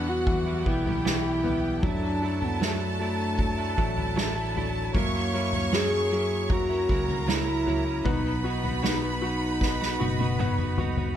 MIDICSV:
0, 0, Header, 1, 7, 480
1, 0, Start_track
1, 0, Tempo, 779221
1, 1127, Time_signature, 4, 2, 24, 8
1, 6877, End_track
2, 0, Start_track
2, 0, Title_t, "Violin section"
2, 0, Program_c, 0, 48
2, 0, Note_on_c, 0, 66, 89
2, 0, Note_on_c, 0, 78, 90
2, 381, Note_off_c, 0, 66, 0
2, 382, Note_off_c, 0, 78, 0
2, 400, Note_on_c, 0, 79, 85
2, 402, Note_on_c, 0, 67, 82
2, 1109, Note_off_c, 0, 79, 0
2, 1110, Note_off_c, 0, 67, 0
2, 1120, Note_on_c, 0, 69, 83
2, 1123, Note_on_c, 0, 81, 98
2, 3019, Note_off_c, 0, 69, 0
2, 3020, Note_off_c, 0, 81, 0
2, 3047, Note_on_c, 0, 85, 97
2, 3048, Note_on_c, 0, 73, 88
2, 3988, Note_off_c, 0, 73, 0
2, 3988, Note_off_c, 0, 85, 0
2, 4002, Note_on_c, 0, 82, 92
2, 4006, Note_on_c, 0, 70, 81
2, 4945, Note_off_c, 0, 82, 0
2, 4947, Note_off_c, 0, 70, 0
2, 4959, Note_on_c, 0, 83, 99
2, 4962, Note_on_c, 0, 71, 84
2, 6858, Note_off_c, 0, 83, 0
2, 6860, Note_off_c, 0, 71, 0
2, 6877, End_track
3, 0, Start_track
3, 0, Title_t, "Soft synth lead"
3, 0, Program_c, 1, 80
3, 52, Note_on_c, 1, 66, 115
3, 410, Note_off_c, 1, 66, 0
3, 414, Note_on_c, 1, 64, 113
3, 1141, Note_on_c, 1, 62, 113
3, 1150, Note_off_c, 1, 64, 0
3, 1502, Note_on_c, 1, 59, 98
3, 1511, Note_off_c, 1, 62, 0
3, 1622, Note_on_c, 1, 57, 97
3, 1631, Note_off_c, 1, 59, 0
3, 2575, Note_off_c, 1, 57, 0
3, 3056, Note_on_c, 1, 58, 108
3, 3534, Note_on_c, 1, 68, 127
3, 3543, Note_off_c, 1, 58, 0
3, 4013, Note_on_c, 1, 66, 106
3, 4022, Note_off_c, 1, 68, 0
3, 4491, Note_on_c, 1, 64, 119
3, 4500, Note_off_c, 1, 66, 0
3, 4969, Note_on_c, 1, 63, 108
3, 4979, Note_off_c, 1, 64, 0
3, 5198, Note_on_c, 1, 59, 92
3, 5207, Note_off_c, 1, 63, 0
3, 5436, Note_on_c, 1, 63, 96
3, 5445, Note_off_c, 1, 59, 0
3, 5680, Note_off_c, 1, 63, 0
3, 5683, Note_on_c, 1, 63, 88
3, 6620, Note_off_c, 1, 63, 0
3, 6877, End_track
4, 0, Start_track
4, 0, Title_t, "Clean electric guitar"
4, 0, Program_c, 2, 27
4, 0, Note_on_c, 2, 54, 60
4, 0, Note_on_c, 2, 55, 62
4, 0, Note_on_c, 2, 59, 67
4, 0, Note_on_c, 2, 64, 64
4, 276, Note_off_c, 2, 64, 0
4, 282, Note_off_c, 2, 59, 0
4, 284, Note_on_c, 2, 64, 56
4, 286, Note_off_c, 2, 54, 0
4, 287, Note_off_c, 2, 55, 0
4, 290, Note_on_c, 2, 59, 54
4, 294, Note_on_c, 2, 55, 51
4, 299, Note_on_c, 2, 54, 43
4, 393, Note_off_c, 2, 54, 0
4, 400, Note_off_c, 2, 55, 0
4, 400, Note_on_c, 2, 54, 60
4, 404, Note_off_c, 2, 59, 0
4, 405, Note_off_c, 2, 64, 0
4, 407, Note_on_c, 2, 55, 55
4, 411, Note_on_c, 2, 59, 64
4, 415, Note_on_c, 2, 64, 65
4, 518, Note_off_c, 2, 64, 0
4, 523, Note_off_c, 2, 54, 0
4, 524, Note_off_c, 2, 59, 0
4, 526, Note_on_c, 2, 64, 53
4, 527, Note_off_c, 2, 55, 0
4, 531, Note_on_c, 2, 59, 48
4, 533, Note_on_c, 2, 55, 48
4, 538, Note_on_c, 2, 54, 47
4, 639, Note_off_c, 2, 54, 0
4, 640, Note_off_c, 2, 55, 0
4, 641, Note_on_c, 2, 40, 82
4, 644, Note_off_c, 2, 59, 0
4, 644, Note_off_c, 2, 64, 0
4, 646, Note_on_c, 2, 47, 91
4, 646, Note_on_c, 2, 54, 96
4, 648, Note_on_c, 2, 55, 87
4, 651, Note_on_c, 2, 59, 94
4, 652, Note_on_c, 2, 64, 96
4, 754, Note_off_c, 2, 64, 0
4, 759, Note_off_c, 2, 59, 0
4, 762, Note_off_c, 2, 55, 0
4, 762, Note_on_c, 2, 64, 56
4, 764, Note_off_c, 2, 40, 0
4, 766, Note_off_c, 2, 47, 0
4, 766, Note_off_c, 2, 54, 0
4, 766, Note_on_c, 2, 59, 65
4, 770, Note_on_c, 2, 55, 56
4, 773, Note_on_c, 2, 54, 50
4, 883, Note_off_c, 2, 55, 0
4, 884, Note_off_c, 2, 64, 0
4, 887, Note_off_c, 2, 59, 0
4, 890, Note_off_c, 2, 54, 0
4, 891, Note_on_c, 2, 55, 63
4, 893, Note_on_c, 2, 59, 73
4, 899, Note_on_c, 2, 64, 70
4, 1124, Note_on_c, 2, 54, 75
4, 1126, Note_off_c, 2, 55, 0
4, 1126, Note_off_c, 2, 64, 0
4, 1128, Note_on_c, 2, 57, 82
4, 1129, Note_off_c, 2, 59, 0
4, 1132, Note_on_c, 2, 62, 75
4, 1134, Note_on_c, 2, 64, 99
4, 1359, Note_off_c, 2, 54, 0
4, 1366, Note_off_c, 2, 57, 0
4, 1366, Note_on_c, 2, 54, 55
4, 1369, Note_off_c, 2, 62, 0
4, 1370, Note_off_c, 2, 64, 0
4, 1373, Note_on_c, 2, 57, 61
4, 1376, Note_on_c, 2, 62, 75
4, 1380, Note_on_c, 2, 64, 67
4, 1479, Note_off_c, 2, 64, 0
4, 1486, Note_off_c, 2, 62, 0
4, 1486, Note_on_c, 2, 64, 56
4, 1487, Note_off_c, 2, 54, 0
4, 1490, Note_off_c, 2, 57, 0
4, 1493, Note_on_c, 2, 62, 49
4, 1500, Note_on_c, 2, 57, 41
4, 1604, Note_off_c, 2, 57, 0
4, 1606, Note_on_c, 2, 54, 83
4, 1607, Note_off_c, 2, 64, 0
4, 1608, Note_off_c, 2, 62, 0
4, 1612, Note_on_c, 2, 57, 78
4, 1615, Note_on_c, 2, 62, 89
4, 1617, Note_on_c, 2, 64, 88
4, 1837, Note_off_c, 2, 54, 0
4, 1844, Note_off_c, 2, 57, 0
4, 1845, Note_on_c, 2, 54, 64
4, 1847, Note_off_c, 2, 62, 0
4, 1852, Note_off_c, 2, 64, 0
4, 1852, Note_on_c, 2, 57, 62
4, 1855, Note_on_c, 2, 62, 71
4, 1858, Note_on_c, 2, 64, 71
4, 2194, Note_off_c, 2, 64, 0
4, 2201, Note_off_c, 2, 62, 0
4, 2201, Note_on_c, 2, 64, 62
4, 2206, Note_off_c, 2, 54, 0
4, 2206, Note_off_c, 2, 57, 0
4, 2208, Note_on_c, 2, 62, 59
4, 2213, Note_on_c, 2, 57, 51
4, 2317, Note_off_c, 2, 57, 0
4, 2320, Note_on_c, 2, 54, 75
4, 2323, Note_off_c, 2, 62, 0
4, 2324, Note_off_c, 2, 64, 0
4, 2325, Note_on_c, 2, 57, 70
4, 2330, Note_on_c, 2, 62, 72
4, 2333, Note_on_c, 2, 64, 69
4, 2436, Note_off_c, 2, 64, 0
4, 2442, Note_off_c, 2, 62, 0
4, 2443, Note_off_c, 2, 54, 0
4, 2443, Note_on_c, 2, 64, 57
4, 2446, Note_off_c, 2, 57, 0
4, 2449, Note_on_c, 2, 62, 53
4, 2457, Note_on_c, 2, 57, 50
4, 2560, Note_off_c, 2, 57, 0
4, 2563, Note_off_c, 2, 62, 0
4, 2563, Note_on_c, 2, 54, 101
4, 2565, Note_off_c, 2, 64, 0
4, 2567, Note_on_c, 2, 57, 110
4, 2570, Note_on_c, 2, 62, 114
4, 2572, Note_on_c, 2, 64, 119
4, 2673, Note_off_c, 2, 64, 0
4, 2681, Note_on_c, 2, 64, 78
4, 2682, Note_off_c, 2, 62, 0
4, 2685, Note_off_c, 2, 54, 0
4, 2687, Note_off_c, 2, 57, 0
4, 2689, Note_on_c, 2, 62, 65
4, 2695, Note_on_c, 2, 57, 62
4, 2799, Note_off_c, 2, 57, 0
4, 2802, Note_on_c, 2, 54, 72
4, 2804, Note_off_c, 2, 64, 0
4, 2805, Note_off_c, 2, 62, 0
4, 2806, Note_on_c, 2, 57, 73
4, 2813, Note_on_c, 2, 62, 76
4, 2816, Note_on_c, 2, 64, 90
4, 3040, Note_off_c, 2, 54, 0
4, 3047, Note_off_c, 2, 57, 0
4, 3047, Note_on_c, 2, 54, 72
4, 3050, Note_off_c, 2, 62, 0
4, 3050, Note_off_c, 2, 64, 0
4, 3052, Note_on_c, 2, 58, 89
4, 3054, Note_on_c, 2, 61, 84
4, 3057, Note_on_c, 2, 64, 82
4, 3277, Note_off_c, 2, 54, 0
4, 3281, Note_off_c, 2, 58, 0
4, 3284, Note_on_c, 2, 54, 67
4, 3286, Note_off_c, 2, 61, 0
4, 3289, Note_off_c, 2, 64, 0
4, 3289, Note_on_c, 2, 58, 60
4, 3293, Note_on_c, 2, 61, 71
4, 3296, Note_on_c, 2, 64, 78
4, 3398, Note_off_c, 2, 64, 0
4, 3405, Note_off_c, 2, 54, 0
4, 3405, Note_off_c, 2, 61, 0
4, 3405, Note_on_c, 2, 64, 57
4, 3408, Note_off_c, 2, 58, 0
4, 3413, Note_on_c, 2, 61, 54
4, 3418, Note_on_c, 2, 58, 48
4, 3525, Note_off_c, 2, 58, 0
4, 3526, Note_off_c, 2, 61, 0
4, 3526, Note_off_c, 2, 64, 0
4, 3527, Note_on_c, 2, 54, 93
4, 3532, Note_on_c, 2, 58, 95
4, 3533, Note_on_c, 2, 61, 91
4, 3536, Note_on_c, 2, 64, 86
4, 3757, Note_off_c, 2, 54, 0
4, 3763, Note_off_c, 2, 58, 0
4, 3765, Note_on_c, 2, 54, 74
4, 3766, Note_off_c, 2, 61, 0
4, 3770, Note_on_c, 2, 58, 64
4, 3771, Note_off_c, 2, 64, 0
4, 3773, Note_on_c, 2, 61, 78
4, 3777, Note_on_c, 2, 64, 77
4, 4113, Note_off_c, 2, 64, 0
4, 4119, Note_off_c, 2, 61, 0
4, 4120, Note_on_c, 2, 64, 59
4, 4126, Note_off_c, 2, 54, 0
4, 4126, Note_off_c, 2, 58, 0
4, 4127, Note_on_c, 2, 61, 55
4, 4134, Note_on_c, 2, 58, 46
4, 4240, Note_off_c, 2, 58, 0
4, 4243, Note_on_c, 2, 54, 60
4, 4244, Note_off_c, 2, 64, 0
4, 4245, Note_off_c, 2, 61, 0
4, 4248, Note_on_c, 2, 58, 65
4, 4253, Note_on_c, 2, 61, 68
4, 4255, Note_on_c, 2, 64, 70
4, 4356, Note_off_c, 2, 64, 0
4, 4363, Note_off_c, 2, 61, 0
4, 4363, Note_on_c, 2, 64, 58
4, 4365, Note_off_c, 2, 54, 0
4, 4367, Note_off_c, 2, 58, 0
4, 4371, Note_on_c, 2, 61, 49
4, 4377, Note_on_c, 2, 58, 46
4, 4476, Note_off_c, 2, 58, 0
4, 4480, Note_off_c, 2, 61, 0
4, 4480, Note_on_c, 2, 54, 92
4, 4483, Note_off_c, 2, 64, 0
4, 4483, Note_on_c, 2, 58, 94
4, 4487, Note_on_c, 2, 61, 98
4, 4490, Note_on_c, 2, 64, 105
4, 4592, Note_off_c, 2, 64, 0
4, 4600, Note_on_c, 2, 64, 70
4, 4601, Note_off_c, 2, 61, 0
4, 4604, Note_off_c, 2, 54, 0
4, 4605, Note_off_c, 2, 58, 0
4, 4608, Note_on_c, 2, 61, 57
4, 4614, Note_on_c, 2, 58, 54
4, 4717, Note_off_c, 2, 58, 0
4, 4719, Note_on_c, 2, 54, 60
4, 4722, Note_off_c, 2, 61, 0
4, 4723, Note_off_c, 2, 64, 0
4, 4724, Note_on_c, 2, 58, 66
4, 4729, Note_on_c, 2, 61, 66
4, 4733, Note_on_c, 2, 64, 76
4, 4829, Note_off_c, 2, 64, 0
4, 4836, Note_on_c, 2, 64, 54
4, 4838, Note_off_c, 2, 61, 0
4, 4843, Note_off_c, 2, 54, 0
4, 4845, Note_on_c, 2, 61, 55
4, 4846, Note_off_c, 2, 58, 0
4, 4853, Note_on_c, 2, 58, 46
4, 4959, Note_off_c, 2, 58, 0
4, 4959, Note_on_c, 2, 47, 81
4, 4960, Note_on_c, 2, 54, 76
4, 4961, Note_off_c, 2, 64, 0
4, 4962, Note_on_c, 2, 59, 85
4, 4963, Note_off_c, 2, 61, 0
4, 4965, Note_on_c, 2, 63, 79
4, 4968, Note_on_c, 2, 66, 78
4, 5188, Note_off_c, 2, 54, 0
4, 5193, Note_off_c, 2, 59, 0
4, 5196, Note_on_c, 2, 54, 61
4, 5197, Note_off_c, 2, 63, 0
4, 5200, Note_on_c, 2, 59, 62
4, 5201, Note_off_c, 2, 66, 0
4, 5203, Note_off_c, 2, 47, 0
4, 5204, Note_on_c, 2, 63, 64
4, 5209, Note_on_c, 2, 66, 68
4, 5308, Note_off_c, 2, 66, 0
4, 5315, Note_off_c, 2, 63, 0
4, 5316, Note_on_c, 2, 66, 59
4, 5321, Note_off_c, 2, 54, 0
4, 5321, Note_off_c, 2, 59, 0
4, 5322, Note_on_c, 2, 63, 51
4, 5328, Note_on_c, 2, 59, 46
4, 5434, Note_off_c, 2, 59, 0
4, 5436, Note_off_c, 2, 63, 0
4, 5436, Note_on_c, 2, 47, 85
4, 5438, Note_off_c, 2, 66, 0
4, 5439, Note_on_c, 2, 54, 83
4, 5441, Note_on_c, 2, 59, 91
4, 5444, Note_on_c, 2, 63, 94
4, 5445, Note_on_c, 2, 66, 90
4, 5671, Note_off_c, 2, 54, 0
4, 5675, Note_off_c, 2, 59, 0
4, 5678, Note_on_c, 2, 54, 61
4, 5681, Note_off_c, 2, 47, 0
4, 5681, Note_off_c, 2, 63, 0
4, 5683, Note_on_c, 2, 59, 62
4, 5684, Note_off_c, 2, 66, 0
4, 5689, Note_on_c, 2, 63, 67
4, 5691, Note_on_c, 2, 66, 68
4, 6032, Note_off_c, 2, 66, 0
4, 6040, Note_off_c, 2, 63, 0
4, 6040, Note_on_c, 2, 66, 62
4, 6043, Note_off_c, 2, 54, 0
4, 6045, Note_off_c, 2, 59, 0
4, 6048, Note_on_c, 2, 63, 54
4, 6055, Note_on_c, 2, 59, 50
4, 6154, Note_off_c, 2, 59, 0
4, 6155, Note_on_c, 2, 54, 63
4, 6158, Note_off_c, 2, 63, 0
4, 6161, Note_on_c, 2, 59, 61
4, 6163, Note_off_c, 2, 66, 0
4, 6166, Note_on_c, 2, 63, 66
4, 6169, Note_on_c, 2, 66, 69
4, 6270, Note_off_c, 2, 66, 0
4, 6277, Note_on_c, 2, 66, 57
4, 6278, Note_off_c, 2, 63, 0
4, 6281, Note_off_c, 2, 54, 0
4, 6284, Note_off_c, 2, 59, 0
4, 6285, Note_on_c, 2, 63, 61
4, 6291, Note_on_c, 2, 59, 53
4, 6395, Note_off_c, 2, 59, 0
4, 6400, Note_off_c, 2, 63, 0
4, 6400, Note_on_c, 2, 47, 101
4, 6401, Note_on_c, 2, 54, 100
4, 6402, Note_off_c, 2, 66, 0
4, 6403, Note_on_c, 2, 59, 96
4, 6407, Note_on_c, 2, 63, 107
4, 6409, Note_on_c, 2, 66, 107
4, 6510, Note_off_c, 2, 66, 0
4, 6516, Note_off_c, 2, 63, 0
4, 6517, Note_on_c, 2, 66, 73
4, 6523, Note_off_c, 2, 47, 0
4, 6524, Note_off_c, 2, 54, 0
4, 6524, Note_on_c, 2, 63, 65
4, 6525, Note_off_c, 2, 59, 0
4, 6531, Note_on_c, 2, 59, 57
4, 6635, Note_off_c, 2, 59, 0
4, 6639, Note_on_c, 2, 54, 64
4, 6640, Note_off_c, 2, 63, 0
4, 6642, Note_off_c, 2, 66, 0
4, 6643, Note_on_c, 2, 59, 79
4, 6648, Note_on_c, 2, 63, 74
4, 6651, Note_on_c, 2, 66, 80
4, 6752, Note_off_c, 2, 66, 0
4, 6759, Note_off_c, 2, 63, 0
4, 6760, Note_on_c, 2, 66, 58
4, 6763, Note_off_c, 2, 54, 0
4, 6765, Note_off_c, 2, 59, 0
4, 6767, Note_on_c, 2, 63, 54
4, 6772, Note_on_c, 2, 59, 44
4, 6877, Note_off_c, 2, 59, 0
4, 6877, Note_off_c, 2, 63, 0
4, 6877, Note_off_c, 2, 66, 0
4, 6877, End_track
5, 0, Start_track
5, 0, Title_t, "Felt piano"
5, 0, Program_c, 3, 0
5, 0, Control_c, 3, 64, 127
5, 0, Note_on_c, 3, 52, 58
5, 0, Note_on_c, 3, 59, 67
5, 154, Note_off_c, 3, 52, 0
5, 163, Note_on_c, 3, 52, 61
5, 395, Note_off_c, 3, 59, 0
5, 405, Note_on_c, 3, 59, 61
5, 640, Note_off_c, 3, 52, 0
5, 649, Note_on_c, 3, 52, 58
5, 875, Note_off_c, 3, 59, 0
5, 884, Note_on_c, 3, 59, 64
5, 1114, Note_off_c, 3, 52, 0
5, 1118, Note_off_c, 3, 59, 0
5, 1126, Note_on_c, 3, 54, 78
5, 1135, Control_c, 3, 64, 0
5, 1230, Control_c, 3, 64, 127
5, 1354, Note_off_c, 3, 54, 0
5, 1364, Note_on_c, 3, 54, 58
5, 1594, Note_off_c, 3, 54, 0
5, 1603, Note_on_c, 3, 54, 57
5, 1837, Note_off_c, 3, 54, 0
5, 1846, Note_on_c, 3, 54, 63
5, 2077, Note_off_c, 3, 54, 0
5, 2087, Note_on_c, 3, 54, 57
5, 2318, Note_off_c, 3, 54, 0
5, 2327, Note_on_c, 3, 54, 58
5, 2558, Note_off_c, 3, 54, 0
5, 2567, Note_on_c, 3, 54, 57
5, 2803, Note_off_c, 3, 54, 0
5, 2812, Note_on_c, 3, 54, 63
5, 3042, Note_off_c, 3, 54, 0
5, 3055, Note_on_c, 3, 54, 73
5, 3056, Control_c, 3, 64, 0
5, 3168, Control_c, 3, 64, 127
5, 3282, Note_off_c, 3, 54, 0
5, 3291, Note_on_c, 3, 54, 64
5, 3522, Note_off_c, 3, 54, 0
5, 3531, Note_on_c, 3, 54, 64
5, 3762, Note_off_c, 3, 54, 0
5, 3771, Note_on_c, 3, 54, 69
5, 3999, Note_off_c, 3, 54, 0
5, 4009, Note_on_c, 3, 54, 66
5, 4237, Note_off_c, 3, 54, 0
5, 4246, Note_on_c, 3, 54, 59
5, 4472, Note_off_c, 3, 54, 0
5, 4481, Note_on_c, 3, 54, 54
5, 4713, Note_off_c, 3, 54, 0
5, 4722, Note_on_c, 3, 54, 55
5, 4956, Note_on_c, 3, 59, 78
5, 4957, Note_off_c, 3, 54, 0
5, 4975, Control_c, 3, 64, 0
5, 5068, Control_c, 3, 64, 127
5, 5200, Note_on_c, 3, 66, 56
5, 5431, Note_off_c, 3, 59, 0
5, 5440, Note_on_c, 3, 59, 57
5, 5669, Note_off_c, 3, 66, 0
5, 5679, Note_on_c, 3, 66, 68
5, 5910, Note_off_c, 3, 59, 0
5, 5919, Note_on_c, 3, 59, 56
5, 6149, Note_off_c, 3, 66, 0
5, 6158, Note_on_c, 3, 66, 57
5, 6391, Note_off_c, 3, 59, 0
5, 6400, Note_on_c, 3, 59, 57
5, 6631, Note_off_c, 3, 66, 0
5, 6640, Note_on_c, 3, 66, 58
5, 6869, Note_off_c, 3, 59, 0
5, 6876, Note_off_c, 3, 66, 0
5, 6877, End_track
6, 0, Start_track
6, 0, Title_t, "Fingered electric bass"
6, 0, Program_c, 4, 33
6, 0, Note_on_c, 4, 40, 99
6, 380, Note_off_c, 4, 40, 0
6, 406, Note_on_c, 4, 35, 84
6, 1102, Note_off_c, 4, 35, 0
6, 1125, Note_on_c, 4, 42, 125
6, 2301, Note_off_c, 4, 42, 0
6, 2328, Note_on_c, 4, 33, 90
6, 3023, Note_off_c, 4, 33, 0
6, 3047, Note_on_c, 4, 42, 110
6, 4222, Note_off_c, 4, 42, 0
6, 4244, Note_on_c, 4, 37, 90
6, 4941, Note_off_c, 4, 37, 0
6, 4960, Note_on_c, 4, 35, 114
6, 6139, Note_off_c, 4, 35, 0
6, 6161, Note_on_c, 4, 30, 84
6, 6859, Note_off_c, 4, 30, 0
6, 6877, End_track
7, 0, Start_track
7, 0, Title_t, "Drums"
7, 165, Note_on_c, 9, 36, 101
7, 166, Note_on_c, 9, 43, 64
7, 227, Note_off_c, 9, 36, 0
7, 228, Note_off_c, 9, 43, 0
7, 408, Note_on_c, 9, 36, 100
7, 469, Note_off_c, 9, 36, 0
7, 527, Note_on_c, 9, 43, 78
7, 589, Note_off_c, 9, 43, 0
7, 652, Note_on_c, 9, 38, 107
7, 714, Note_off_c, 9, 38, 0
7, 890, Note_on_c, 9, 43, 77
7, 952, Note_off_c, 9, 43, 0
7, 1127, Note_on_c, 9, 43, 106
7, 1128, Note_on_c, 9, 36, 116
7, 1189, Note_off_c, 9, 36, 0
7, 1189, Note_off_c, 9, 43, 0
7, 1490, Note_on_c, 9, 43, 75
7, 1551, Note_off_c, 9, 43, 0
7, 1613, Note_on_c, 9, 38, 120
7, 1675, Note_off_c, 9, 38, 0
7, 2086, Note_on_c, 9, 36, 95
7, 2087, Note_on_c, 9, 43, 66
7, 2148, Note_off_c, 9, 36, 0
7, 2148, Note_off_c, 9, 43, 0
7, 2329, Note_on_c, 9, 36, 93
7, 2390, Note_off_c, 9, 36, 0
7, 2448, Note_on_c, 9, 43, 74
7, 2510, Note_off_c, 9, 43, 0
7, 2572, Note_on_c, 9, 38, 119
7, 2633, Note_off_c, 9, 38, 0
7, 2812, Note_on_c, 9, 43, 72
7, 2873, Note_off_c, 9, 43, 0
7, 3046, Note_on_c, 9, 43, 100
7, 3047, Note_on_c, 9, 36, 101
7, 3108, Note_off_c, 9, 36, 0
7, 3108, Note_off_c, 9, 43, 0
7, 3405, Note_on_c, 9, 43, 70
7, 3466, Note_off_c, 9, 43, 0
7, 3529, Note_on_c, 9, 38, 125
7, 3590, Note_off_c, 9, 38, 0
7, 4003, Note_on_c, 9, 36, 98
7, 4003, Note_on_c, 9, 43, 70
7, 4064, Note_off_c, 9, 43, 0
7, 4065, Note_off_c, 9, 36, 0
7, 4246, Note_on_c, 9, 36, 99
7, 4308, Note_off_c, 9, 36, 0
7, 4364, Note_on_c, 9, 43, 70
7, 4425, Note_off_c, 9, 43, 0
7, 4488, Note_on_c, 9, 38, 107
7, 4549, Note_off_c, 9, 38, 0
7, 4725, Note_on_c, 9, 43, 72
7, 4787, Note_off_c, 9, 43, 0
7, 4959, Note_on_c, 9, 43, 101
7, 4962, Note_on_c, 9, 36, 111
7, 5021, Note_off_c, 9, 43, 0
7, 5024, Note_off_c, 9, 36, 0
7, 5322, Note_on_c, 9, 43, 73
7, 5383, Note_off_c, 9, 43, 0
7, 5448, Note_on_c, 9, 38, 127
7, 5509, Note_off_c, 9, 38, 0
7, 5921, Note_on_c, 9, 36, 92
7, 5927, Note_on_c, 9, 38, 65
7, 5982, Note_off_c, 9, 36, 0
7, 5988, Note_off_c, 9, 38, 0
7, 6050, Note_on_c, 9, 38, 58
7, 6112, Note_off_c, 9, 38, 0
7, 6164, Note_on_c, 9, 48, 86
7, 6225, Note_off_c, 9, 48, 0
7, 6285, Note_on_c, 9, 48, 79
7, 6347, Note_off_c, 9, 48, 0
7, 6403, Note_on_c, 9, 47, 102
7, 6465, Note_off_c, 9, 47, 0
7, 6519, Note_on_c, 9, 45, 77
7, 6581, Note_off_c, 9, 45, 0
7, 6638, Note_on_c, 9, 43, 108
7, 6700, Note_off_c, 9, 43, 0
7, 6759, Note_on_c, 9, 43, 109
7, 6820, Note_off_c, 9, 43, 0
7, 6877, End_track
0, 0, End_of_file